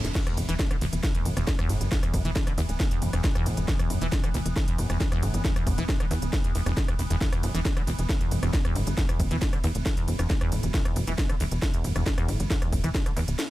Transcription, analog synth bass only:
0.04 E1
0.37 E1
0.49 E1
0.81 E1
0.93 E1
1.25 E1
1.37 E1
1.70 G1
1.81 G1
2.14 E1
2.25 E1
2.58 E2
2.69 D1
3.02 E1
3.13 E1
3.46 E1
3.57 E1
3.90 E1
4.02 E1
4.34 E1
4.46 E1
4.79 E1
4.90 E1
5.23 G1
5.34 G1
5.67 E1
5.78 E1
6.11 E2
6.22 D1
6.55 E1
6.66 E1
6.99 E1
7.11 E1
7.43 E1
7.55 E1
7.87 E1
7.99 E1
8.32 E1
8.43 E1
8.76 G1
8.87 G1
9.20 E1
9.31 E1
9.64 E2
9.75 D1
10.08 E1
10.19 E1
10.52 E1
10.63 E1
10.96 E1
11.08 E1
11.40 E1
11.52 E1
11.84 E1
11.96 E1
12.29 G1
12.40 G1
12.73 E1
12.84 E1
13.17 E2
13.28 D1

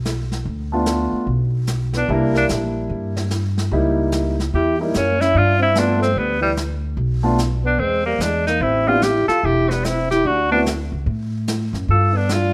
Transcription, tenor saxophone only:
1.97 D4
2.13 A#3
2.37 D4
4.55 G4
4.81 A#3
4.97 C#4
5.22 E4
5.37 F4
5.62 E4
5.79 D4
6.02 C4
6.18 B3
6.42 G3
7.66 D4
7.79 C4
8.06 A#3
8.22 D4
8.47 D#4
8.62 E4
8.88 F4
9.03 G4
9.28 A4
9.45 G4
9.70 B3
9.85 E4
10.11 G4
10.26 F#4
10.52 D4
11.91 A4
12.17 D4
12.32 F4

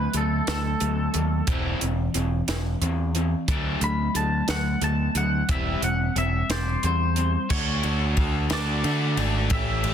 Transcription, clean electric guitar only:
Already playing: B4
0.17 A4
0.49 A4
3.84 B5
4.16 A5
4.50 F#5
4.84 A5
5.17 F#5
5.51 E5
5.84 F#5
6.18 E5
6.50 C5 D5
6.86 C5
7.50 C#5
8.53 D5
9.53 E5

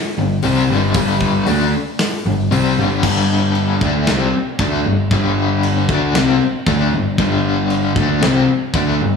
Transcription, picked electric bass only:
0.17 G1
0.44 C2
0.70 G1
0.95 G1
1.48 D2
2.25 G1
2.51 C2
2.77 G1
3.03 G1
3.81 D2
4.08 C2
4.35 muted picked electric bass stroke
4.59 D2
4.85 G1
5.12 G1
5.89 D2
6.15 C2
6.42 muted picked electric bass stroke
6.67 D2
6.93 G1
7.18 G1
7.96 D2
8.21 C2
8.48 muted picked electric bass stroke
8.73 D2
9.01 G1

